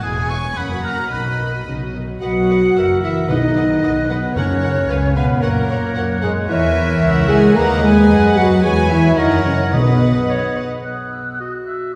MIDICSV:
0, 0, Header, 1, 11, 480
1, 0, Start_track
1, 0, Key_signature, 5, "major"
1, 0, Tempo, 545951
1, 31, Time_signature, 2, 2, 24, 8
1, 2432, Tempo, 534283
1, 7712, Tempo, 548948
1, 10607, End_track
2, 0, Start_track
2, 0, Title_t, "Violin section"
2, 0, Program_c, 0, 48
2, 36, Note_on_c, 0, 80, 72
2, 503, Note_off_c, 0, 80, 0
2, 507, Note_on_c, 0, 78, 63
2, 979, Note_on_c, 0, 75, 53
2, 984, Note_off_c, 0, 78, 0
2, 1694, Note_off_c, 0, 75, 0
2, 1953, Note_on_c, 0, 78, 59
2, 2024, Note_off_c, 0, 78, 0
2, 2204, Note_on_c, 0, 78, 46
2, 2274, Note_off_c, 0, 78, 0
2, 2439, Note_on_c, 0, 78, 54
2, 2511, Note_off_c, 0, 78, 0
2, 2676, Note_on_c, 0, 78, 48
2, 2748, Note_off_c, 0, 78, 0
2, 2913, Note_on_c, 0, 78, 56
2, 2984, Note_off_c, 0, 78, 0
2, 3153, Note_on_c, 0, 78, 47
2, 3225, Note_off_c, 0, 78, 0
2, 3391, Note_on_c, 0, 78, 50
2, 3462, Note_off_c, 0, 78, 0
2, 3626, Note_on_c, 0, 78, 52
2, 3697, Note_off_c, 0, 78, 0
2, 3877, Note_on_c, 0, 78, 65
2, 3949, Note_off_c, 0, 78, 0
2, 4115, Note_on_c, 0, 78, 49
2, 4187, Note_off_c, 0, 78, 0
2, 4349, Note_on_c, 0, 80, 54
2, 4421, Note_off_c, 0, 80, 0
2, 4580, Note_on_c, 0, 80, 57
2, 4652, Note_off_c, 0, 80, 0
2, 4814, Note_on_c, 0, 78, 69
2, 4886, Note_off_c, 0, 78, 0
2, 5052, Note_on_c, 0, 78, 55
2, 5124, Note_off_c, 0, 78, 0
2, 5291, Note_on_c, 0, 78, 63
2, 5363, Note_off_c, 0, 78, 0
2, 5542, Note_on_c, 0, 78, 61
2, 5614, Note_off_c, 0, 78, 0
2, 5782, Note_on_c, 0, 80, 66
2, 6233, Note_off_c, 0, 80, 0
2, 6277, Note_on_c, 0, 78, 72
2, 6741, Note_off_c, 0, 78, 0
2, 6752, Note_on_c, 0, 78, 76
2, 7207, Note_off_c, 0, 78, 0
2, 7218, Note_on_c, 0, 78, 75
2, 7697, Note_off_c, 0, 78, 0
2, 7703, Note_on_c, 0, 80, 83
2, 8151, Note_off_c, 0, 80, 0
2, 8181, Note_on_c, 0, 78, 71
2, 8656, Note_off_c, 0, 78, 0
2, 8666, Note_on_c, 0, 78, 68
2, 9448, Note_off_c, 0, 78, 0
2, 10607, End_track
3, 0, Start_track
3, 0, Title_t, "Flute"
3, 0, Program_c, 1, 73
3, 1957, Note_on_c, 1, 78, 81
3, 2640, Note_off_c, 1, 78, 0
3, 2675, Note_on_c, 1, 76, 65
3, 2728, Note_off_c, 1, 76, 0
3, 2910, Note_on_c, 1, 75, 73
3, 3614, Note_off_c, 1, 75, 0
3, 3625, Note_on_c, 1, 71, 67
3, 3861, Note_off_c, 1, 71, 0
3, 3866, Note_on_c, 1, 73, 80
3, 4580, Note_on_c, 1, 71, 73
3, 4594, Note_off_c, 1, 73, 0
3, 4812, Note_off_c, 1, 71, 0
3, 4818, Note_on_c, 1, 70, 88
3, 5528, Note_off_c, 1, 70, 0
3, 5541, Note_on_c, 1, 68, 74
3, 5597, Note_off_c, 1, 68, 0
3, 5789, Note_on_c, 1, 76, 94
3, 6506, Note_on_c, 1, 80, 92
3, 6519, Note_off_c, 1, 76, 0
3, 6740, Note_off_c, 1, 80, 0
3, 6746, Note_on_c, 1, 82, 82
3, 6800, Note_off_c, 1, 82, 0
3, 6983, Note_on_c, 1, 80, 96
3, 7453, Note_off_c, 1, 80, 0
3, 7458, Note_on_c, 1, 78, 91
3, 7514, Note_off_c, 1, 78, 0
3, 7708, Note_on_c, 1, 80, 100
3, 7946, Note_on_c, 1, 76, 86
3, 7959, Note_off_c, 1, 80, 0
3, 8183, Note_on_c, 1, 75, 77
3, 8196, Note_off_c, 1, 76, 0
3, 8422, Note_off_c, 1, 75, 0
3, 8427, Note_on_c, 1, 73, 83
3, 8660, Note_off_c, 1, 73, 0
3, 8665, Note_on_c, 1, 71, 72
3, 9147, Note_off_c, 1, 71, 0
3, 9642, Note_on_c, 1, 87, 43
3, 9879, Note_on_c, 1, 88, 40
3, 9892, Note_off_c, 1, 87, 0
3, 10120, Note_on_c, 1, 90, 42
3, 10133, Note_off_c, 1, 88, 0
3, 10583, Note_off_c, 1, 90, 0
3, 10607, End_track
4, 0, Start_track
4, 0, Title_t, "Violin section"
4, 0, Program_c, 2, 48
4, 18, Note_on_c, 2, 80, 69
4, 252, Note_on_c, 2, 85, 71
4, 258, Note_off_c, 2, 80, 0
4, 494, Note_off_c, 2, 85, 0
4, 498, Note_on_c, 2, 83, 67
4, 738, Note_off_c, 2, 83, 0
4, 746, Note_on_c, 2, 82, 70
4, 980, Note_off_c, 2, 82, 0
4, 985, Note_on_c, 2, 83, 59
4, 1459, Note_off_c, 2, 83, 0
4, 1950, Note_on_c, 2, 78, 70
4, 2637, Note_off_c, 2, 78, 0
4, 2676, Note_on_c, 2, 76, 66
4, 2913, Note_off_c, 2, 76, 0
4, 2917, Note_on_c, 2, 75, 66
4, 3617, Note_off_c, 2, 75, 0
4, 3627, Note_on_c, 2, 71, 70
4, 3859, Note_on_c, 2, 73, 77
4, 3867, Note_off_c, 2, 71, 0
4, 4565, Note_off_c, 2, 73, 0
4, 4576, Note_on_c, 2, 71, 69
4, 4812, Note_off_c, 2, 71, 0
4, 4815, Note_on_c, 2, 70, 80
4, 5526, Note_off_c, 2, 70, 0
4, 5540, Note_on_c, 2, 68, 72
4, 5611, Note_off_c, 2, 68, 0
4, 5785, Note_on_c, 2, 76, 89
4, 6495, Note_off_c, 2, 76, 0
4, 6511, Note_on_c, 2, 80, 88
4, 6752, Note_off_c, 2, 80, 0
4, 6752, Note_on_c, 2, 82, 86
4, 6992, Note_off_c, 2, 82, 0
4, 6992, Note_on_c, 2, 80, 90
4, 7461, Note_off_c, 2, 80, 0
4, 7463, Note_on_c, 2, 78, 84
4, 7695, Note_on_c, 2, 80, 88
4, 7704, Note_off_c, 2, 78, 0
4, 7935, Note_on_c, 2, 76, 78
4, 7942, Note_off_c, 2, 80, 0
4, 8173, Note_on_c, 2, 75, 80
4, 8182, Note_off_c, 2, 76, 0
4, 8413, Note_on_c, 2, 73, 75
4, 8422, Note_off_c, 2, 75, 0
4, 8658, Note_on_c, 2, 71, 73
4, 8664, Note_off_c, 2, 73, 0
4, 9143, Note_off_c, 2, 71, 0
4, 10607, End_track
5, 0, Start_track
5, 0, Title_t, "Oboe"
5, 0, Program_c, 3, 68
5, 25, Note_on_c, 3, 68, 81
5, 259, Note_on_c, 3, 73, 83
5, 272, Note_off_c, 3, 68, 0
5, 499, Note_on_c, 3, 71, 70
5, 512, Note_off_c, 3, 73, 0
5, 733, Note_off_c, 3, 71, 0
5, 738, Note_on_c, 3, 70, 73
5, 979, Note_on_c, 3, 71, 66
5, 992, Note_off_c, 3, 70, 0
5, 1466, Note_off_c, 3, 71, 0
5, 1953, Note_on_c, 3, 75, 50
5, 2439, Note_on_c, 3, 76, 52
5, 2453, Note_off_c, 3, 75, 0
5, 2914, Note_on_c, 3, 78, 57
5, 2928, Note_off_c, 3, 76, 0
5, 4346, Note_on_c, 3, 77, 60
5, 4359, Note_off_c, 3, 78, 0
5, 4811, Note_off_c, 3, 77, 0
5, 4817, Note_on_c, 3, 78, 66
5, 6715, Note_off_c, 3, 78, 0
5, 6747, Note_on_c, 3, 78, 76
5, 7690, Note_off_c, 3, 78, 0
5, 7707, Note_on_c, 3, 73, 73
5, 8153, Note_off_c, 3, 73, 0
5, 8186, Note_on_c, 3, 73, 66
5, 8667, Note_on_c, 3, 75, 60
5, 8681, Note_off_c, 3, 73, 0
5, 9401, Note_off_c, 3, 75, 0
5, 9643, Note_on_c, 3, 78, 57
5, 10087, Note_off_c, 3, 78, 0
5, 10125, Note_on_c, 3, 75, 55
5, 10231, Note_off_c, 3, 75, 0
5, 10357, Note_on_c, 3, 76, 55
5, 10588, Note_off_c, 3, 76, 0
5, 10607, End_track
6, 0, Start_track
6, 0, Title_t, "Clarinet"
6, 0, Program_c, 4, 71
6, 1958, Note_on_c, 4, 71, 51
6, 2438, Note_on_c, 4, 70, 55
6, 2451, Note_off_c, 4, 71, 0
6, 2907, Note_on_c, 4, 71, 53
6, 2921, Note_off_c, 4, 70, 0
6, 3862, Note_on_c, 4, 70, 57
6, 3876, Note_off_c, 4, 71, 0
6, 4340, Note_on_c, 4, 71, 59
6, 4354, Note_off_c, 4, 70, 0
6, 4808, Note_off_c, 4, 71, 0
6, 4813, Note_on_c, 4, 73, 72
6, 5788, Note_on_c, 4, 70, 72
6, 5802, Note_off_c, 4, 73, 0
6, 6751, Note_on_c, 4, 71, 75
6, 6764, Note_off_c, 4, 70, 0
6, 7700, Note_off_c, 4, 71, 0
6, 7705, Note_on_c, 4, 71, 79
6, 8181, Note_on_c, 4, 70, 71
6, 8194, Note_off_c, 4, 71, 0
6, 8673, Note_on_c, 4, 71, 59
6, 8686, Note_off_c, 4, 70, 0
6, 9026, Note_off_c, 4, 71, 0
6, 9157, Note_on_c, 4, 73, 79
6, 9399, Note_on_c, 4, 71, 63
6, 9413, Note_off_c, 4, 73, 0
6, 9643, Note_off_c, 4, 71, 0
6, 9647, Note_on_c, 4, 59, 45
6, 10089, Note_off_c, 4, 59, 0
6, 10123, Note_on_c, 4, 66, 46
6, 10585, Note_off_c, 4, 66, 0
6, 10607, End_track
7, 0, Start_track
7, 0, Title_t, "Viola section"
7, 0, Program_c, 5, 48
7, 30, Note_on_c, 5, 64, 58
7, 32, Note_on_c, 5, 56, 54
7, 138, Note_off_c, 5, 64, 0
7, 139, Note_off_c, 5, 56, 0
7, 148, Note_on_c, 5, 59, 49
7, 148, Note_on_c, 5, 68, 51
7, 265, Note_off_c, 5, 59, 0
7, 265, Note_off_c, 5, 68, 0
7, 269, Note_on_c, 5, 56, 48
7, 271, Note_on_c, 5, 64, 55
7, 383, Note_on_c, 5, 68, 51
7, 384, Note_off_c, 5, 56, 0
7, 384, Note_on_c, 5, 59, 51
7, 385, Note_off_c, 5, 64, 0
7, 501, Note_off_c, 5, 59, 0
7, 501, Note_off_c, 5, 68, 0
7, 502, Note_on_c, 5, 61, 55
7, 504, Note_on_c, 5, 58, 51
7, 612, Note_off_c, 5, 61, 0
7, 613, Note_off_c, 5, 58, 0
7, 622, Note_on_c, 5, 58, 46
7, 624, Note_on_c, 5, 54, 45
7, 731, Note_off_c, 5, 58, 0
7, 739, Note_on_c, 5, 61, 47
7, 741, Note_off_c, 5, 54, 0
7, 741, Note_on_c, 5, 58, 46
7, 850, Note_off_c, 5, 58, 0
7, 860, Note_off_c, 5, 61, 0
7, 860, Note_on_c, 5, 54, 41
7, 861, Note_on_c, 5, 58, 43
7, 981, Note_off_c, 5, 54, 0
7, 981, Note_off_c, 5, 58, 0
7, 982, Note_on_c, 5, 51, 51
7, 982, Note_on_c, 5, 63, 45
7, 1094, Note_off_c, 5, 51, 0
7, 1094, Note_off_c, 5, 63, 0
7, 1106, Note_on_c, 5, 66, 42
7, 1107, Note_on_c, 5, 54, 45
7, 1226, Note_off_c, 5, 54, 0
7, 1226, Note_off_c, 5, 66, 0
7, 1227, Note_on_c, 5, 51, 44
7, 1229, Note_on_c, 5, 63, 43
7, 1347, Note_off_c, 5, 51, 0
7, 1348, Note_off_c, 5, 63, 0
7, 1349, Note_on_c, 5, 54, 42
7, 1349, Note_on_c, 5, 66, 41
7, 1467, Note_on_c, 5, 63, 45
7, 1468, Note_off_c, 5, 54, 0
7, 1468, Note_off_c, 5, 66, 0
7, 1468, Note_on_c, 5, 51, 39
7, 1579, Note_off_c, 5, 63, 0
7, 1580, Note_off_c, 5, 51, 0
7, 1592, Note_on_c, 5, 54, 37
7, 1594, Note_on_c, 5, 66, 39
7, 1711, Note_off_c, 5, 54, 0
7, 1712, Note_off_c, 5, 66, 0
7, 1715, Note_on_c, 5, 51, 40
7, 1716, Note_on_c, 5, 63, 40
7, 1833, Note_off_c, 5, 51, 0
7, 1833, Note_on_c, 5, 54, 37
7, 1834, Note_off_c, 5, 63, 0
7, 1836, Note_on_c, 5, 66, 35
7, 1952, Note_off_c, 5, 54, 0
7, 1954, Note_off_c, 5, 66, 0
7, 1955, Note_on_c, 5, 75, 53
7, 1956, Note_on_c, 5, 71, 55
7, 2025, Note_off_c, 5, 75, 0
7, 2026, Note_off_c, 5, 71, 0
7, 2196, Note_on_c, 5, 75, 47
7, 2197, Note_on_c, 5, 71, 53
7, 2266, Note_off_c, 5, 75, 0
7, 2267, Note_off_c, 5, 71, 0
7, 2432, Note_on_c, 5, 76, 52
7, 2434, Note_on_c, 5, 70, 50
7, 2504, Note_off_c, 5, 76, 0
7, 2506, Note_off_c, 5, 70, 0
7, 2674, Note_on_c, 5, 70, 53
7, 2677, Note_on_c, 5, 76, 50
7, 2746, Note_off_c, 5, 70, 0
7, 2749, Note_off_c, 5, 76, 0
7, 2906, Note_on_c, 5, 75, 55
7, 2907, Note_on_c, 5, 71, 55
7, 2978, Note_off_c, 5, 75, 0
7, 2979, Note_off_c, 5, 71, 0
7, 3150, Note_on_c, 5, 75, 55
7, 3152, Note_on_c, 5, 71, 53
7, 3222, Note_off_c, 5, 75, 0
7, 3224, Note_off_c, 5, 71, 0
7, 3387, Note_on_c, 5, 71, 55
7, 3388, Note_on_c, 5, 75, 52
7, 3458, Note_off_c, 5, 71, 0
7, 3460, Note_off_c, 5, 75, 0
7, 3628, Note_on_c, 5, 71, 53
7, 3629, Note_on_c, 5, 75, 49
7, 3700, Note_off_c, 5, 71, 0
7, 3701, Note_off_c, 5, 75, 0
7, 3864, Note_on_c, 5, 70, 60
7, 3868, Note_on_c, 5, 78, 60
7, 3936, Note_off_c, 5, 70, 0
7, 3940, Note_off_c, 5, 78, 0
7, 4105, Note_on_c, 5, 78, 57
7, 4106, Note_on_c, 5, 70, 56
7, 4176, Note_off_c, 5, 78, 0
7, 4178, Note_off_c, 5, 70, 0
7, 4347, Note_on_c, 5, 77, 59
7, 4348, Note_on_c, 5, 71, 57
7, 4419, Note_off_c, 5, 77, 0
7, 4420, Note_off_c, 5, 71, 0
7, 4581, Note_on_c, 5, 77, 59
7, 4584, Note_on_c, 5, 71, 55
7, 4653, Note_off_c, 5, 77, 0
7, 4656, Note_off_c, 5, 71, 0
7, 4820, Note_on_c, 5, 70, 62
7, 4823, Note_on_c, 5, 73, 70
7, 4892, Note_off_c, 5, 70, 0
7, 4894, Note_off_c, 5, 73, 0
7, 5057, Note_on_c, 5, 70, 64
7, 5061, Note_on_c, 5, 73, 59
7, 5129, Note_off_c, 5, 70, 0
7, 5133, Note_off_c, 5, 73, 0
7, 5298, Note_on_c, 5, 73, 62
7, 5300, Note_on_c, 5, 70, 64
7, 5370, Note_off_c, 5, 73, 0
7, 5372, Note_off_c, 5, 70, 0
7, 5546, Note_on_c, 5, 73, 66
7, 5548, Note_on_c, 5, 70, 59
7, 5618, Note_off_c, 5, 73, 0
7, 5619, Note_off_c, 5, 70, 0
7, 5794, Note_on_c, 5, 73, 65
7, 6023, Note_off_c, 5, 73, 0
7, 6033, Note_on_c, 5, 73, 71
7, 6272, Note_on_c, 5, 76, 75
7, 6739, Note_off_c, 5, 73, 0
7, 6743, Note_off_c, 5, 76, 0
7, 6752, Note_on_c, 5, 71, 75
7, 6752, Note_on_c, 5, 75, 71
7, 7221, Note_off_c, 5, 75, 0
7, 7222, Note_off_c, 5, 71, 0
7, 7231, Note_on_c, 5, 75, 73
7, 7233, Note_on_c, 5, 71, 80
7, 7701, Note_off_c, 5, 71, 0
7, 7703, Note_off_c, 5, 75, 0
7, 7711, Note_on_c, 5, 73, 73
7, 7712, Note_on_c, 5, 71, 70
7, 8155, Note_off_c, 5, 71, 0
7, 8155, Note_off_c, 5, 73, 0
7, 8182, Note_on_c, 5, 70, 70
7, 8182, Note_on_c, 5, 73, 75
7, 8660, Note_off_c, 5, 73, 0
7, 8664, Note_on_c, 5, 71, 61
7, 8665, Note_on_c, 5, 75, 62
7, 8669, Note_off_c, 5, 70, 0
7, 9447, Note_off_c, 5, 75, 0
7, 9463, Note_off_c, 5, 71, 0
7, 10607, End_track
8, 0, Start_track
8, 0, Title_t, "French horn section"
8, 0, Program_c, 6, 60
8, 1945, Note_on_c, 6, 66, 87
8, 2635, Note_off_c, 6, 66, 0
8, 2668, Note_on_c, 6, 64, 76
8, 2909, Note_off_c, 6, 64, 0
8, 2915, Note_on_c, 6, 63, 85
8, 3616, Note_off_c, 6, 63, 0
8, 3632, Note_on_c, 6, 59, 76
8, 3869, Note_off_c, 6, 59, 0
8, 3877, Note_on_c, 6, 61, 89
8, 4580, Note_on_c, 6, 59, 83
8, 4589, Note_off_c, 6, 61, 0
8, 4815, Note_on_c, 6, 58, 86
8, 4818, Note_off_c, 6, 59, 0
8, 5534, Note_on_c, 6, 56, 89
8, 5541, Note_off_c, 6, 58, 0
8, 5781, Note_on_c, 6, 64, 104
8, 5786, Note_off_c, 6, 56, 0
8, 6493, Note_off_c, 6, 64, 0
8, 6494, Note_on_c, 6, 68, 112
8, 6734, Note_on_c, 6, 70, 100
8, 6739, Note_off_c, 6, 68, 0
8, 6983, Note_off_c, 6, 70, 0
8, 6985, Note_on_c, 6, 68, 109
8, 7465, Note_on_c, 6, 66, 100
8, 7467, Note_off_c, 6, 68, 0
8, 7707, Note_on_c, 6, 68, 97
8, 7710, Note_off_c, 6, 66, 0
8, 7815, Note_off_c, 6, 68, 0
8, 7933, Note_on_c, 6, 64, 98
8, 8168, Note_on_c, 6, 63, 100
8, 8176, Note_off_c, 6, 64, 0
8, 8420, Note_off_c, 6, 63, 0
8, 8427, Note_on_c, 6, 61, 82
8, 8537, Note_off_c, 6, 61, 0
8, 8677, Note_on_c, 6, 59, 71
8, 9153, Note_off_c, 6, 59, 0
8, 10607, End_track
9, 0, Start_track
9, 0, Title_t, "Cello section"
9, 0, Program_c, 7, 48
9, 31, Note_on_c, 7, 40, 69
9, 445, Note_off_c, 7, 40, 0
9, 504, Note_on_c, 7, 42, 56
9, 925, Note_off_c, 7, 42, 0
9, 980, Note_on_c, 7, 47, 57
9, 1409, Note_off_c, 7, 47, 0
9, 1471, Note_on_c, 7, 49, 51
9, 1541, Note_off_c, 7, 49, 0
9, 1714, Note_on_c, 7, 47, 43
9, 1784, Note_off_c, 7, 47, 0
9, 1953, Note_on_c, 7, 54, 75
9, 2639, Note_off_c, 7, 54, 0
9, 2671, Note_on_c, 7, 52, 66
9, 2910, Note_off_c, 7, 52, 0
9, 2911, Note_on_c, 7, 51, 76
9, 3614, Note_off_c, 7, 51, 0
9, 3626, Note_on_c, 7, 47, 72
9, 3865, Note_on_c, 7, 49, 81
9, 3866, Note_off_c, 7, 47, 0
9, 4581, Note_on_c, 7, 47, 79
9, 4583, Note_off_c, 7, 49, 0
9, 4814, Note_off_c, 7, 47, 0
9, 4817, Note_on_c, 7, 46, 76
9, 5528, Note_off_c, 7, 46, 0
9, 5541, Note_on_c, 7, 44, 75
9, 5613, Note_off_c, 7, 44, 0
9, 5786, Note_on_c, 7, 52, 90
9, 6496, Note_off_c, 7, 52, 0
9, 6507, Note_on_c, 7, 56, 99
9, 6746, Note_off_c, 7, 56, 0
9, 6750, Note_on_c, 7, 58, 88
9, 6989, Note_on_c, 7, 56, 93
9, 6991, Note_off_c, 7, 58, 0
9, 7463, Note_on_c, 7, 54, 95
9, 7469, Note_off_c, 7, 56, 0
9, 7705, Note_on_c, 7, 56, 99
9, 7709, Note_off_c, 7, 54, 0
9, 7946, Note_off_c, 7, 56, 0
9, 7948, Note_on_c, 7, 52, 81
9, 8183, Note_off_c, 7, 52, 0
9, 8185, Note_on_c, 7, 51, 77
9, 8420, Note_on_c, 7, 49, 74
9, 8423, Note_off_c, 7, 51, 0
9, 8490, Note_off_c, 7, 49, 0
9, 8665, Note_on_c, 7, 47, 69
9, 9147, Note_off_c, 7, 47, 0
9, 10607, End_track
10, 0, Start_track
10, 0, Title_t, "Timpani"
10, 0, Program_c, 8, 47
10, 2912, Note_on_c, 8, 47, 82
10, 3593, Note_off_c, 8, 47, 0
10, 3865, Note_on_c, 8, 42, 81
10, 4311, Note_off_c, 8, 42, 0
10, 8668, Note_on_c, 8, 47, 83
10, 9367, Note_off_c, 8, 47, 0
10, 10607, End_track
11, 0, Start_track
11, 0, Title_t, "Double bass section"
11, 0, Program_c, 10, 48
11, 36, Note_on_c, 10, 28, 61
11, 447, Note_off_c, 10, 28, 0
11, 505, Note_on_c, 10, 30, 65
11, 926, Note_off_c, 10, 30, 0
11, 983, Note_on_c, 10, 35, 52
11, 1411, Note_off_c, 10, 35, 0
11, 1464, Note_on_c, 10, 35, 50
11, 1893, Note_off_c, 10, 35, 0
11, 1949, Note_on_c, 10, 35, 59
11, 2375, Note_off_c, 10, 35, 0
11, 2432, Note_on_c, 10, 30, 62
11, 2855, Note_off_c, 10, 30, 0
11, 2912, Note_on_c, 10, 35, 61
11, 3334, Note_off_c, 10, 35, 0
11, 3389, Note_on_c, 10, 35, 64
11, 3811, Note_off_c, 10, 35, 0
11, 3864, Note_on_c, 10, 42, 60
11, 4287, Note_off_c, 10, 42, 0
11, 4341, Note_on_c, 10, 37, 70
11, 4763, Note_off_c, 10, 37, 0
11, 4815, Note_on_c, 10, 42, 70
11, 5238, Note_off_c, 10, 42, 0
11, 5293, Note_on_c, 10, 42, 75
11, 5731, Note_off_c, 10, 42, 0
11, 5790, Note_on_c, 10, 40, 74
11, 6237, Note_off_c, 10, 40, 0
11, 6269, Note_on_c, 10, 37, 79
11, 6742, Note_off_c, 10, 37, 0
11, 6749, Note_on_c, 10, 39, 82
11, 7219, Note_off_c, 10, 39, 0
11, 7230, Note_on_c, 10, 42, 78
11, 7711, Note_on_c, 10, 40, 76
11, 7712, Note_off_c, 10, 42, 0
11, 8155, Note_off_c, 10, 40, 0
11, 8190, Note_on_c, 10, 42, 70
11, 8664, Note_off_c, 10, 42, 0
11, 8674, Note_on_c, 10, 35, 62
11, 9468, Note_off_c, 10, 35, 0
11, 10607, End_track
0, 0, End_of_file